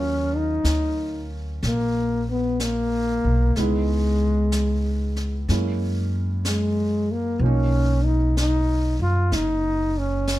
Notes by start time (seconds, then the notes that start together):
Already playing: D#2 F#3 C#4 F4 A#4
0.36 D#4
0.64 D2, brush sweep, snare, hi-hat pedal
1.62 A#1, brush sweep, snare
1.67 A#3
2.31 B3
2.60 A#3, brush sweep, snare, hi-hat pedal
3.24 B1
3.56 C#2 G#3 B3 E4, brush sweep, snare
3.60 D#4
4.52 brush sweep, snare, hi-hat pedal
5.16 snare
5.48 F#2 G#3 A#3 C#4 E4, brush sweep, snare
6.45 G#3, brush sweep, snare, hi-hat pedal
7.12 A#3
7.39 B1 F3 A#3, brush sweep
7.44 C#4 D#4
8.05 D#4
8.37 D#4, brush sweep, snare, hi-hat pedal
8.99 F#2 F4
9.32 F#1 D#4, brush sweep, snare
9.98 C#4
10.28 brush sweep, snare, hi-hat pedal